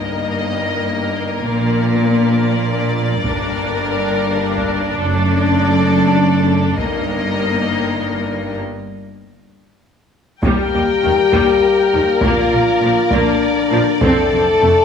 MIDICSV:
0, 0, Header, 1, 9, 480
1, 0, Start_track
1, 0, Tempo, 590551
1, 1196, Time_signature, 6, 3, 24, 8
1, 5513, Tempo, 609137
1, 8393, Tempo, 596421
1, 11943, End_track
2, 0, Start_track
2, 0, Title_t, "Violin section"
2, 0, Program_c, 0, 48
2, 0, Note_on_c, 0, 75, 51
2, 1166, Note_off_c, 0, 75, 0
2, 1202, Note_on_c, 0, 74, 53
2, 4045, Note_off_c, 0, 74, 0
2, 4097, Note_on_c, 0, 74, 56
2, 5493, Note_off_c, 0, 74, 0
2, 5511, Note_on_c, 0, 75, 54
2, 6911, Note_off_c, 0, 75, 0
2, 8390, Note_on_c, 0, 79, 50
2, 9799, Note_off_c, 0, 79, 0
2, 9830, Note_on_c, 0, 74, 54
2, 11943, Note_off_c, 0, 74, 0
2, 11943, End_track
3, 0, Start_track
3, 0, Title_t, "Violin section"
3, 0, Program_c, 1, 48
3, 0, Note_on_c, 1, 70, 39
3, 2605, Note_off_c, 1, 70, 0
3, 2643, Note_on_c, 1, 70, 54
3, 4045, Note_off_c, 1, 70, 0
3, 4074, Note_on_c, 1, 69, 47
3, 5481, Note_off_c, 1, 69, 0
3, 5503, Note_on_c, 1, 70, 47
3, 6907, Note_off_c, 1, 70, 0
3, 8393, Note_on_c, 1, 70, 49
3, 11248, Note_off_c, 1, 70, 0
3, 11285, Note_on_c, 1, 69, 56
3, 11943, Note_off_c, 1, 69, 0
3, 11943, End_track
4, 0, Start_track
4, 0, Title_t, "French horn section"
4, 0, Program_c, 2, 60
4, 0, Note_on_c, 2, 58, 47
4, 0, Note_on_c, 2, 63, 41
4, 1175, Note_off_c, 2, 63, 0
4, 1198, Note_on_c, 2, 62, 51
4, 2614, Note_off_c, 2, 58, 0
4, 2654, Note_on_c, 2, 58, 53
4, 3944, Note_off_c, 2, 58, 0
4, 3944, Note_off_c, 2, 62, 0
4, 4082, Note_on_c, 2, 62, 60
4, 4083, Note_on_c, 2, 57, 50
4, 5489, Note_off_c, 2, 62, 0
4, 5490, Note_off_c, 2, 57, 0
4, 5515, Note_on_c, 2, 63, 54
4, 5516, Note_on_c, 2, 58, 48
4, 6916, Note_off_c, 2, 63, 0
4, 6917, Note_off_c, 2, 58, 0
4, 8392, Note_on_c, 2, 67, 87
4, 9800, Note_off_c, 2, 67, 0
4, 9841, Note_on_c, 2, 65, 77
4, 10541, Note_off_c, 2, 65, 0
4, 10548, Note_on_c, 2, 62, 76
4, 11266, Note_on_c, 2, 69, 91
4, 11279, Note_off_c, 2, 62, 0
4, 11943, Note_off_c, 2, 69, 0
4, 11943, End_track
5, 0, Start_track
5, 0, Title_t, "Viola section"
5, 0, Program_c, 3, 48
5, 0, Note_on_c, 3, 58, 45
5, 2604, Note_off_c, 3, 58, 0
5, 2651, Note_on_c, 3, 62, 51
5, 5488, Note_off_c, 3, 62, 0
5, 5523, Note_on_c, 3, 58, 51
5, 6917, Note_off_c, 3, 58, 0
5, 8392, Note_on_c, 3, 55, 49
5, 8617, Note_off_c, 3, 55, 0
5, 8639, Note_on_c, 3, 55, 36
5, 8703, Note_off_c, 3, 55, 0
5, 8871, Note_on_c, 3, 51, 40
5, 8935, Note_off_c, 3, 51, 0
5, 9105, Note_on_c, 3, 55, 60
5, 9332, Note_off_c, 3, 55, 0
5, 9603, Note_on_c, 3, 51, 45
5, 9667, Note_off_c, 3, 51, 0
5, 9852, Note_on_c, 3, 58, 54
5, 10066, Note_off_c, 3, 58, 0
5, 10096, Note_on_c, 3, 58, 34
5, 10160, Note_off_c, 3, 58, 0
5, 10332, Note_on_c, 3, 53, 34
5, 10396, Note_off_c, 3, 53, 0
5, 10555, Note_on_c, 3, 58, 56
5, 10778, Note_off_c, 3, 58, 0
5, 11027, Note_on_c, 3, 53, 54
5, 11091, Note_off_c, 3, 53, 0
5, 11283, Note_on_c, 3, 60, 62
5, 11505, Note_off_c, 3, 60, 0
5, 11532, Note_on_c, 3, 60, 48
5, 11596, Note_off_c, 3, 60, 0
5, 11757, Note_on_c, 3, 57, 45
5, 11822, Note_off_c, 3, 57, 0
5, 11943, End_track
6, 0, Start_track
6, 0, Title_t, "Trombone section"
6, 0, Program_c, 4, 61
6, 8401, Note_on_c, 4, 55, 53
6, 8406, Note_on_c, 4, 58, 53
6, 9805, Note_off_c, 4, 55, 0
6, 9836, Note_on_c, 4, 50, 57
6, 11255, Note_off_c, 4, 58, 0
6, 11278, Note_on_c, 4, 57, 62
6, 11943, Note_off_c, 4, 50, 0
6, 11943, Note_off_c, 4, 57, 0
6, 11943, End_track
7, 0, Start_track
7, 0, Title_t, "Cello section"
7, 0, Program_c, 5, 48
7, 0, Note_on_c, 5, 43, 44
7, 1196, Note_off_c, 5, 43, 0
7, 1198, Note_on_c, 5, 46, 56
7, 2610, Note_off_c, 5, 46, 0
7, 2632, Note_on_c, 5, 43, 58
7, 4043, Note_off_c, 5, 43, 0
7, 4078, Note_on_c, 5, 42, 65
7, 5487, Note_off_c, 5, 42, 0
7, 5516, Note_on_c, 5, 43, 57
7, 6917, Note_off_c, 5, 43, 0
7, 8393, Note_on_c, 5, 39, 58
7, 8457, Note_off_c, 5, 39, 0
7, 8629, Note_on_c, 5, 39, 40
7, 8693, Note_off_c, 5, 39, 0
7, 8879, Note_on_c, 5, 39, 42
7, 8944, Note_off_c, 5, 39, 0
7, 9117, Note_on_c, 5, 39, 60
7, 9181, Note_off_c, 5, 39, 0
7, 9600, Note_on_c, 5, 39, 42
7, 9664, Note_off_c, 5, 39, 0
7, 9833, Note_on_c, 5, 46, 55
7, 9898, Note_off_c, 5, 46, 0
7, 10070, Note_on_c, 5, 46, 44
7, 10134, Note_off_c, 5, 46, 0
7, 10307, Note_on_c, 5, 46, 44
7, 10372, Note_off_c, 5, 46, 0
7, 10555, Note_on_c, 5, 46, 69
7, 10619, Note_off_c, 5, 46, 0
7, 11035, Note_on_c, 5, 46, 40
7, 11100, Note_off_c, 5, 46, 0
7, 11280, Note_on_c, 5, 41, 72
7, 11345, Note_off_c, 5, 41, 0
7, 11520, Note_on_c, 5, 41, 46
7, 11584, Note_off_c, 5, 41, 0
7, 11758, Note_on_c, 5, 41, 50
7, 11822, Note_off_c, 5, 41, 0
7, 11943, End_track
8, 0, Start_track
8, 0, Title_t, "Double bass section"
8, 0, Program_c, 6, 48
8, 0, Note_on_c, 6, 31, 47
8, 1197, Note_off_c, 6, 31, 0
8, 1200, Note_on_c, 6, 34, 56
8, 2611, Note_off_c, 6, 34, 0
8, 2636, Note_on_c, 6, 31, 58
8, 4045, Note_off_c, 6, 31, 0
8, 4074, Note_on_c, 6, 30, 56
8, 5485, Note_off_c, 6, 30, 0
8, 5511, Note_on_c, 6, 31, 53
8, 6914, Note_off_c, 6, 31, 0
8, 8394, Note_on_c, 6, 39, 58
8, 8458, Note_off_c, 6, 39, 0
8, 8643, Note_on_c, 6, 39, 42
8, 8708, Note_off_c, 6, 39, 0
8, 8878, Note_on_c, 6, 39, 42
8, 8942, Note_off_c, 6, 39, 0
8, 9121, Note_on_c, 6, 39, 56
8, 9185, Note_off_c, 6, 39, 0
8, 9595, Note_on_c, 6, 39, 40
8, 9660, Note_off_c, 6, 39, 0
8, 9833, Note_on_c, 6, 34, 64
8, 9897, Note_off_c, 6, 34, 0
8, 10072, Note_on_c, 6, 34, 41
8, 10136, Note_off_c, 6, 34, 0
8, 10314, Note_on_c, 6, 34, 38
8, 10379, Note_off_c, 6, 34, 0
8, 10551, Note_on_c, 6, 34, 62
8, 10616, Note_off_c, 6, 34, 0
8, 11042, Note_on_c, 6, 34, 44
8, 11106, Note_off_c, 6, 34, 0
8, 11280, Note_on_c, 6, 29, 63
8, 11344, Note_off_c, 6, 29, 0
8, 11520, Note_on_c, 6, 29, 49
8, 11584, Note_off_c, 6, 29, 0
8, 11756, Note_on_c, 6, 29, 49
8, 11820, Note_off_c, 6, 29, 0
8, 11943, End_track
9, 0, Start_track
9, 0, Title_t, "Taiko and cinematic ensemble drums"
9, 2635, Note_on_c, 9, 41, 48
9, 2716, Note_off_c, 9, 41, 0
9, 3714, Note_on_c, 9, 41, 35
9, 3796, Note_off_c, 9, 41, 0
9, 5507, Note_on_c, 9, 41, 47
9, 5586, Note_off_c, 9, 41, 0
9, 8384, Note_on_c, 9, 41, 78
9, 8464, Note_off_c, 9, 41, 0
9, 9109, Note_on_c, 9, 41, 60
9, 9189, Note_off_c, 9, 41, 0
9, 9820, Note_on_c, 9, 41, 76
9, 9901, Note_off_c, 9, 41, 0
9, 10542, Note_on_c, 9, 41, 69
9, 10622, Note_off_c, 9, 41, 0
9, 11270, Note_on_c, 9, 41, 81
9, 11350, Note_off_c, 9, 41, 0
9, 11943, End_track
0, 0, End_of_file